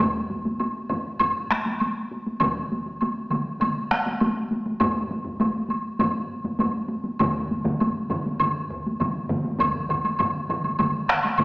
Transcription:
0.00 taiko loud
0.00 taiko low-mid medium
0.30 taiko high medium
0.45 taiko high medium
0.60 taiko high medium
0.60 high woodblock soft
0.89 taiko low-mid loud
0.89 taiko high medium
0.89 high woodblock soft
1.19 taiko low-mid medium
1.19 taiko high medium
1.19 high woodblock medium
1.51 taiko rim medium
1.51 taiko high soft
1.66 taiko high medium
1.80 taiko high medium
1.80 high woodblock soft
2.12 taiko high medium
2.26 taiko high medium
2.40 taiko loud
2.40 taiko mid loud
2.40 taiko high medium
2.40 high woodblock medium
2.72 taiko high soft
2.86 taiko high medium
3.01 taiko high medium
3.01 high woodblock soft
3.31 taiko mid medium
3.31 taiko high medium
3.31 high woodblock soft
3.60 taiko mid medium
3.60 taiko high medium
3.60 high woodblock medium
3.91 taiko rim medium
3.91 taiko high medium
4.06 taiko high medium
4.20 taiko high medium
4.20 high woodblock soft
4.51 taiko high medium
4.66 taiko high medium
4.80 taiko loud
4.80 taiko low-mid loud
4.80 taiko high medium
4.80 high woodblock soft
5.10 taiko low-mid medium
5.10 taiko high medium
5.25 taiko low-mid medium
5.25 taiko high medium
5.40 taiko low-mid loud
5.40 taiko high medium
5.40 high woodblock soft
5.69 taiko high medium
5.69 high woodblock soft
5.99 taiko low-mid loud
5.99 taiko high medium
5.99 high woodblock soft
6.44 taiko low-mid medium
6.44 taiko high medium
6.59 taiko low-mid loud
6.59 taiko high medium
6.59 high woodblock soft
6.89 taiko high medium
7.04 taiko high medium
7.19 taiko loud
7.19 taiko low-mid loud
7.19 taiko mid loud
7.19 taiko high medium
7.19 high woodblock soft
7.51 taiko high medium
7.65 taiko low-mid loud
7.65 taiko mid loud
7.65 taiko high medium
7.80 taiko high medium
7.80 high woodblock soft
8.10 taiko low-mid medium
8.10 taiko mid loud
8.10 taiko high medium
8.10 high woodblock soft
8.26 taiko high medium
8.39 taiko low-mid medium
8.39 taiko mid loud
8.39 taiko high medium
8.39 high woodblock medium
8.71 taiko medium
8.86 taiko high medium
9.00 taiko low-mid loud
9.00 taiko mid medium
9.00 taiko high medium
9.00 high woodblock soft
9.29 taiko low-mid loud
9.29 taiko mid loud
9.29 taiko high medium
9.44 taiko high medium
9.59 taiko medium
9.59 taiko low-mid medium
9.59 taiko mid medium
9.59 taiko high medium
9.59 high woodblock medium
9.74 taiko low-mid medium
9.74 taiko mid medium
9.90 taiko low-mid medium
9.90 taiko mid medium
9.90 high woodblock soft
10.05 taiko high medium
10.05 high woodblock soft
10.19 taiko low-mid medium
10.19 taiko mid medium
10.19 taiko high medium
10.19 high woodblock medium
10.49 taiko low-mid loud
10.49 taiko mid medium
10.49 high woodblock soft
10.64 taiko high medium
10.64 high woodblock soft
10.79 taiko low-mid medium
10.79 taiko mid medium
10.79 taiko high medium
10.79 high woodblock medium
11.08 taiko rim medium
11.08 high woodblock soft
11.23 taiko high soft
11.23 high woodblock soft
11.38 taiko medium
11.38 taiko low-mid loud
11.38 taiko mid medium
11.38 taiko high medium
11.38 high woodblock medium

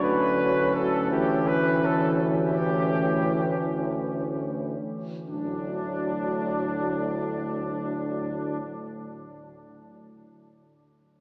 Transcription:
0.00 4.76 D2 soft
0.00 4.80 A2 soft
0.00 1.13 F#3 soft
0.00 0.72 B4 medium
0.05 4.80 C#4 soft
0.74 1.10 A4 medium
1.10 4.80 E3 soft
1.10 1.47 G4 medium
1.47 1.87 B4 medium
1.85 2.14 A4 soft
2.27 3.62 G4 medium
5.27 8.59 D2 soft
5.27 8.59 A2 soft
5.27 8.59 F#3 soft
5.27 8.59 D4 soft

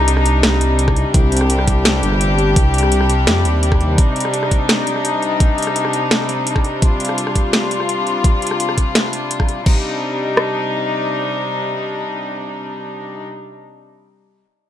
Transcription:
0.00 1.04 C2 loud
0.00 9.62 C3 medium
0.00 9.62 G3 medium
0.00 9.62 D4 medium
0.00 1.13 D#4 medium
0.08 closed hi-hat medium
0.17 cross-stick soft
0.26 closed hi-hat medium
0.43 snare loud
0.43 closed hi-hat medium
0.61 closed hi-hat medium
0.79 closed hi-hat medium
0.88 kick medium
0.88 cross-stick medium
0.96 closed hi-hat soft
1.14 1.31 C2 loud
1.14 3.97 G4 medium
1.14 kick loud
1.14 closed hi-hat medium
1.32 2.02 C2 loud
1.32 closed hi-hat soft
1.37 closed hi-hat medium
1.41 cross-stick soft
1.50 closed hi-hat medium
1.59 cross-stick soft
1.67 kick medium
1.67 closed hi-hat medium
1.85 snare loud
1.85 closed hi-hat medium
2.03 2.55 G1 medium
2.03 closed hi-hat medium
2.12 cross-stick soft
2.21 closed hi-hat medium
2.39 closed hi-hat soft
2.56 3.29 C2 medium
2.56 kick loud
2.56 closed hi-hat medium
2.74 closed hi-hat soft
2.78 closed hi-hat medium
2.83 cross-stick soft
2.92 closed hi-hat medium
3.01 cross-stick soft
3.10 closed hi-hat medium
3.27 3.47 F2 medium
3.27 snare loud
3.27 closed hi-hat medium
3.45 3.79 D#2 medium
3.45 closed hi-hat medium
3.63 closed hi-hat medium
3.72 kick medium
3.72 cross-stick medium
3.81 3.97 D#2 medium
3.81 closed hi-hat soft
3.98 6.81 D#4 medium
3.98 kick loud
3.98 closed hi-hat medium
4.16 closed hi-hat soft
4.20 closed hi-hat medium
4.25 cross-stick soft
4.34 closed hi-hat medium
4.43 cross-stick soft
4.51 kick medium
4.51 closed hi-hat medium
4.69 snare loud
4.69 closed hi-hat medium
4.87 closed hi-hat medium
4.96 cross-stick soft
5.05 closed hi-hat medium
5.23 closed hi-hat soft
5.40 kick loud
5.40 closed hi-hat medium
5.58 closed hi-hat soft
5.62 closed hi-hat medium
5.67 cross-stick soft
5.76 closed hi-hat medium
5.85 cross-stick soft
5.93 closed hi-hat medium
6.11 snare loud
6.11 closed hi-hat medium
6.29 closed hi-hat medium
6.47 closed hi-hat medium
6.56 kick medium
6.56 cross-stick medium
6.64 closed hi-hat soft
6.82 9.65 F4 medium
6.82 kick loud
6.82 closed hi-hat medium
7.00 closed hi-hat soft
7.05 closed hi-hat medium
7.09 cross-stick soft
7.18 closed hi-hat medium
7.27 cross-stick soft
7.35 kick medium
7.35 closed hi-hat medium
7.53 snare loud
7.53 closed hi-hat medium
7.71 closed hi-hat medium
7.80 cross-stick soft
7.89 closed hi-hat medium
8.07 closed hi-hat soft
8.24 kick loud
8.24 closed hi-hat medium
8.42 closed hi-hat soft
8.47 closed hi-hat medium
8.51 cross-stick medium
8.60 closed hi-hat medium
8.69 cross-stick soft
8.78 kick medium
8.78 closed hi-hat medium
8.95 snare loud
8.95 closed hi-hat medium
9.13 closed hi-hat medium
9.31 closed hi-hat medium
9.40 kick medium
9.40 cross-stick medium
9.49 closed hi-hat soft
9.66 13.26 C3 medium
9.66 13.26 G3 medium
9.66 13.26 D4 medium
9.66 13.26 D#4 medium
9.66 kick loud
9.66 crash medium
10.37 cross-stick medium

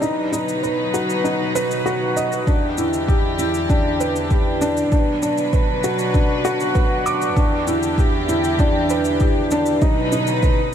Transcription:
0.02 2.45 B2 medium
0.02 2.45 F#3 medium
0.02 0.31 D#4 medium
0.02 2.45 D#4 medium
0.02 2.45 B4 medium
0.02 shaker soft
0.32 0.62 D#4 medium
0.32 shaker medium
0.49 shaker soft
0.63 0.81 B4 medium
0.63 shaker soft
0.94 1.23 F#4 medium
0.94 shaker medium
1.10 shaker soft
1.24 1.42 D#4 medium
1.24 shaker soft
1.55 1.84 B4 medium
1.55 shaker medium
1.71 shaker soft
1.86 2.15 F#4 medium
1.86 shaker soft
2.17 2.46 D#5 medium
2.17 shaker medium
2.32 shaker soft
2.47 4.89 E2 medium
2.47 4.89 E3 medium
2.47 9.78 D4 medium
2.47 2.76 D4 medium
2.47 4.90 G4 medium
2.47 kick loud
2.47 shaker soft
2.78 3.07 E4 medium
2.78 shaker medium
2.93 shaker soft
3.08 3.26 G4 medium
3.08 kick medium
3.08 shaker soft
3.39 3.68 E4 medium
3.39 shaker medium
3.54 shaker soft
3.70 3.99 D4 medium
3.70 kick loud
3.70 shaker soft
4.00 4.29 B4 medium
4.00 shaker medium
4.16 shaker soft
4.31 4.48 G4 medium
4.31 kick medium
4.31 shaker soft
4.61 4.79 D4 medium
4.61 shaker medium
4.77 shaker soft
4.92 7.35 B2 medium
4.92 7.35 F#3 medium
4.92 5.21 D4 medium
4.92 7.35 B4 medium
4.92 kick loud
4.92 shaker soft
5.23 5.52 D4 medium
5.23 shaker medium
5.38 shaker soft
5.53 5.71 B4 medium
5.53 kick medium
5.53 shaker soft
5.84 6.13 F#4 medium
5.84 shaker medium
5.99 shaker soft
6.14 6.32 D4 medium
6.14 kick loud
6.14 shaker soft
6.45 6.74 F#4 loud
6.45 shaker medium
6.60 shaker soft
6.75 6.93 B4 medium
6.75 kick medium
6.75 shaker soft
7.06 7.35 D6 medium
7.06 shaker medium
7.22 shaker soft
7.36 9.79 E2 medium
7.36 9.80 E3 medium
7.36 7.66 D4 medium
7.36 9.79 G4 medium
7.36 kick loud
7.36 shaker soft
7.67 7.96 E4 medium
7.67 shaker medium
7.83 shaker soft
7.98 8.16 G4 medium
7.98 kick medium
7.98 shaker soft
8.29 8.58 E4 medium
8.29 shaker medium
8.44 shaker soft
8.59 8.89 D4 loud
8.59 kick loud
8.59 shaker soft
8.90 9.19 B4 medium
8.90 shaker medium
9.05 shaker soft
9.20 9.38 G4 medium
9.20 kick medium
9.20 shaker soft
9.51 9.69 D4 loud
9.51 shaker medium
9.66 shaker soft
9.81 10.74 B2 medium
9.81 10.74 F#3 medium
9.81 10.74 D#4 medium
9.81 10.11 D#4 medium
9.81 10.74 B4 medium
9.81 kick loud
9.81 shaker soft
10.12 10.42 D#4 medium
10.12 shaker medium
10.27 shaker soft
10.43 10.60 B4 medium
10.43 kick loud
10.43 shaker soft

